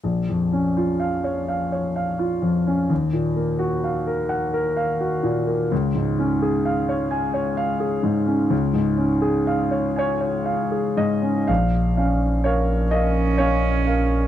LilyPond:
<<
  \new Staff \with { instrumentName = "Grand piano" } { \time 6/8 \key bes \minor \tempo 4. = 42 << { r2. | r2. | r2. | r4. des''4 ees''8 |
f''4 des''8 ees''8 des''4 | } \\ { bes,,16 f,16 des'16 f'16 f''16 des''16 f''16 des''16 f''16 f'16 f,16 des'16 | ees,16 bes,16 bes16 ges'16 f''16 bes'16 ges''16 bes'16 f''16 ges'16 bes,16 bes16 | des,16 aes,16 des'16 aes'16 f''16 des''16 aes''16 des''16 f''16 aes'16 aes,16 des'16 | des,16 aes,16 des'16 aes'16 f''16 des''16 aes''16 des''16 f''16 aes'16 aes,16 des'16 |
bes,,8 <des' f''>8 <bes' f''>8 <bes' f''>8 <des' f''>8 <bes' f''>8 | } >> }
  \new Staff \with { instrumentName = "Cello" } { \time 6/8 \key bes \minor r2. | r2. | r2. | r2. |
r4. des'4. | }
  \new Staff \with { instrumentName = "Sub bass" } { \clef bass \time 6/8 \key bes \minor r2. | r2. | r2. | r2. |
bes,,2. | }
>>